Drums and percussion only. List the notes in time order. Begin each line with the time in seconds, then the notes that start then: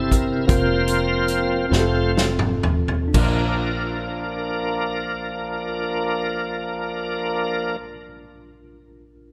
0.11 kick, closed hi-hat
0.49 kick, closed hi-hat
0.87 closed hi-hat
1.28 closed hi-hat
1.73 snare
2.17 snare
2.39 mid tom
2.63 floor tom
2.88 floor tom
3.14 kick, crash